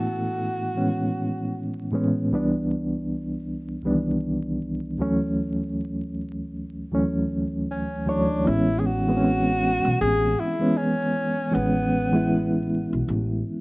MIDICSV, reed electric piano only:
0, 0, Header, 1, 2, 480
1, 0, Start_track
1, 0, Key_signature, 3, "major"
1, 0, Tempo, 769231
1, 1437, Time_signature, 4, 2, 24, 8
1, 8492, End_track
2, 0, Start_track
2, 0, Title_t, "Reed electric piano"
2, 0, Program_c, 0, 4
2, 0, Control_c, 0, 64, 127
2, 0, Note_on_c, 0, 45, 66
2, 0, Note_on_c, 0, 52, 64
2, 0, Note_on_c, 0, 57, 57
2, 0, Note_on_c, 0, 59, 56
2, 0, Note_on_c, 0, 61, 65
2, 0, Note_on_c, 0, 64, 70
2, 374, Note_off_c, 0, 45, 0
2, 377, Note_off_c, 0, 52, 0
2, 380, Note_off_c, 0, 57, 0
2, 382, Note_off_c, 0, 59, 0
2, 385, Note_off_c, 0, 64, 0
2, 462, Note_on_c, 0, 45, 57
2, 468, Note_on_c, 0, 52, 60
2, 474, Note_on_c, 0, 56, 55
2, 479, Note_on_c, 0, 59, 52
2, 483, Note_off_c, 0, 61, 0
2, 483, Note_on_c, 0, 61, 74
2, 1118, Note_off_c, 0, 45, 0
2, 1121, Note_off_c, 0, 52, 0
2, 1124, Note_off_c, 0, 56, 0
2, 1127, Note_off_c, 0, 59, 0
2, 1129, Note_off_c, 0, 61, 0
2, 1196, Note_on_c, 0, 45, 71
2, 1201, Note_on_c, 0, 52, 74
2, 1205, Note_on_c, 0, 56, 68
2, 1212, Note_on_c, 0, 59, 75
2, 1217, Note_on_c, 0, 61, 78
2, 1413, Note_off_c, 0, 45, 0
2, 1415, Note_off_c, 0, 52, 0
2, 1417, Note_off_c, 0, 56, 0
2, 1421, Note_off_c, 0, 59, 0
2, 1423, Note_off_c, 0, 61, 0
2, 1445, Control_c, 0, 64, 0
2, 1445, Note_on_c, 0, 36, 76
2, 1451, Note_on_c, 0, 52, 70
2, 1456, Note_on_c, 0, 55, 76
2, 1461, Note_on_c, 0, 59, 72
2, 1467, Note_on_c, 0, 62, 93
2, 1568, Control_c, 0, 64, 127
2, 2306, Note_off_c, 0, 36, 0
2, 2309, Note_off_c, 0, 52, 0
2, 2311, Note_off_c, 0, 55, 0
2, 2314, Note_off_c, 0, 59, 0
2, 2317, Note_off_c, 0, 62, 0
2, 2392, Note_on_c, 0, 36, 80
2, 2398, Note_on_c, 0, 51, 64
2, 2403, Note_on_c, 0, 55, 75
2, 2409, Note_on_c, 0, 59, 72
2, 2415, Note_on_c, 0, 62, 75
2, 2439, Note_on_c, 0, 52, 73
2, 2445, Note_off_c, 0, 51, 0
2, 3043, Note_off_c, 0, 36, 0
2, 3049, Note_off_c, 0, 55, 0
2, 3052, Note_off_c, 0, 59, 0
2, 3054, Note_off_c, 0, 62, 0
2, 3067, Note_off_c, 0, 52, 0
2, 3108, Note_on_c, 0, 38, 80
2, 3114, Note_on_c, 0, 52, 69
2, 3121, Note_on_c, 0, 54, 79
2, 3126, Note_on_c, 0, 57, 82
2, 3127, Control_c, 0, 64, 0
2, 3130, Note_on_c, 0, 61, 101
2, 3235, Control_c, 0, 64, 127
2, 3978, Note_off_c, 0, 38, 0
2, 3980, Note_off_c, 0, 52, 0
2, 3984, Note_off_c, 0, 54, 0
2, 3986, Note_off_c, 0, 57, 0
2, 3988, Note_off_c, 0, 61, 0
2, 4312, Note_on_c, 0, 38, 72
2, 4317, Note_on_c, 0, 52, 71
2, 4323, Note_on_c, 0, 54, 64
2, 4329, Note_on_c, 0, 57, 66
2, 4334, Note_on_c, 0, 61, 86
2, 4963, Note_off_c, 0, 38, 0
2, 4966, Note_off_c, 0, 52, 0
2, 4969, Note_off_c, 0, 54, 0
2, 4972, Note_off_c, 0, 57, 0
2, 4974, Note_off_c, 0, 61, 0
2, 5027, Note_on_c, 0, 38, 75
2, 5033, Note_on_c, 0, 52, 68
2, 5038, Note_on_c, 0, 54, 67
2, 5043, Note_on_c, 0, 57, 58
2, 5047, Note_on_c, 0, 73, 93
2, 5249, Note_off_c, 0, 38, 0
2, 5251, Note_off_c, 0, 52, 0
2, 5254, Note_off_c, 0, 54, 0
2, 5256, Note_off_c, 0, 57, 0
2, 5259, Note_off_c, 0, 73, 0
2, 5269, Note_on_c, 0, 52, 70
2, 5275, Note_on_c, 0, 56, 64
2, 5284, Note_on_c, 0, 59, 63
2, 5286, Control_c, 0, 64, 0
2, 5290, Note_on_c, 0, 61, 77
2, 5412, Control_c, 0, 64, 127
2, 5603, Note_off_c, 0, 52, 0
2, 5606, Note_off_c, 0, 56, 0
2, 5610, Note_off_c, 0, 59, 0
2, 5614, Note_off_c, 0, 61, 0
2, 5661, Note_on_c, 0, 52, 62
2, 5667, Note_on_c, 0, 56, 67
2, 5675, Note_on_c, 0, 59, 70
2, 5683, Note_on_c, 0, 60, 53
2, 5704, Note_off_c, 0, 60, 0
2, 5721, Note_on_c, 0, 61, 76
2, 6486, Note_off_c, 0, 52, 0
2, 6489, Note_off_c, 0, 56, 0
2, 6492, Note_off_c, 0, 59, 0
2, 6516, Note_off_c, 0, 61, 0
2, 6608, Note_on_c, 0, 52, 64
2, 6614, Note_on_c, 0, 56, 64
2, 6622, Note_on_c, 0, 59, 73
2, 6629, Note_on_c, 0, 61, 73
2, 7133, Note_off_c, 0, 52, 0
2, 7136, Note_off_c, 0, 56, 0
2, 7140, Note_off_c, 0, 59, 0
2, 7144, Note_off_c, 0, 61, 0
2, 7184, Note_on_c, 0, 52, 74
2, 7191, Note_on_c, 0, 56, 57
2, 7199, Note_on_c, 0, 59, 61
2, 7205, Note_on_c, 0, 61, 68
2, 7521, Note_off_c, 0, 52, 0
2, 7524, Note_off_c, 0, 56, 0
2, 7528, Note_off_c, 0, 59, 0
2, 7531, Note_off_c, 0, 61, 0
2, 7562, Note_on_c, 0, 52, 70
2, 7569, Note_on_c, 0, 56, 62
2, 7578, Note_on_c, 0, 59, 62
2, 7585, Note_on_c, 0, 64, 76
2, 8396, Note_off_c, 0, 52, 0
2, 8399, Note_off_c, 0, 56, 0
2, 8404, Note_off_c, 0, 59, 0
2, 8407, Note_off_c, 0, 64, 0
2, 8492, End_track
0, 0, End_of_file